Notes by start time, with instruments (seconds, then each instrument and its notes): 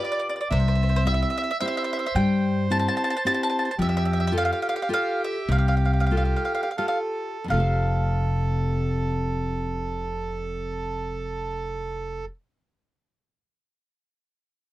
Already playing: nylon-string guitar F4 G4 B4, accordion D5
0.05 mandolin D5
0.12 mandolin D5
0.20 mandolin D5
0.29 mandolin D5
0.36 mandolin D5
0.41 mandolin D5
0.50 upright bass C2, nylon-string guitar C3, mandolin C5, accordion E5
0.60 mandolin C5
0.68 mandolin C5
0.75 mandolin C5
0.83 mandolin C5
0.89 mandolin C5
0.96 mandolin C5
1.05 nylon-string guitar C4 E4 G4, mandolin E5
1.14 mandolin E5
1.23 mandolin E5
1.30 mandolin E5
1.38 mandolin E5
1.44 mandolin E5
1.51 mandolin E5
1.60 nylon-string guitar C4 E4 G4, accordion C5, mandolin E5
1.68 mandolin E5
1.77 mandolin E5
1.84 mandolin E5
1.93 mandolin E5
1.99 mandolin E5
2.06 mandolin E5
2.15 upright bass G2, nylon-string guitar G3, mandolin G5
2.70 nylon-string guitar C4 E4 G4, mandolin A5
2.79 mandolin A5
2.88 mandolin A5
2.97 mandolin A5
3.04 mandolin A5
3.10 mandolin A5
3.17 mandolin A5
3.25 nylon-string guitar C4 E4 G4, mandolin A5
3.34 mandolin A5
3.43 mandolin A5
3.50 mandolin A5
3.59 mandolin A5
3.65 mandolin A5
3.71 mandolin A5
3.78 upright bass F2, nylon-string guitar F3, accordion G4, mandolin E5
3.89 mandolin E5
3.97 mandolin E5
4.05 mandolin E5
4.13 mandolin E5
4.20 mandolin E5
4.27 mandolin E5
4.32 nylon-string guitar F4 G4 A4
4.38 mandolin F5
4.45 mandolin F5
4.53 mandolin F5
4.62 mandolin F5
4.69 mandolin F5
4.76 mandolin F5
4.82 mandolin F5
4.89 nylon-string guitar F4 G4 A4
4.94 mandolin F5
5.24 mandolin E5
5.49 upright bass C2, nylon-string guitar C3, mandolin F5
5.58 mandolin F5
5.68 mandolin F5
5.77 mandolin F5
5.85 mandolin F5
5.93 mandolin F5
6.00 mandolin F5
6.07 mandolin F5
6.11 nylon-string guitar F4 G4 A4
6.17 mandolin F5
6.25 mandolin F5
6.36 mandolin F5
6.45 mandolin F5
6.55 mandolin F5
6.63 mandolin F5
6.71 mandolin F5
6.77 nylon-string guitar F4 G4 A4, accordion A4, mandolin F5
6.88 mandolin F5
7.44 nylon-string guitar F2 C3
7.50 upright bass F1, nylon-string guitar A3 F4, accordion A4, mandolin F5
7.57 nylon-string guitar G4 C5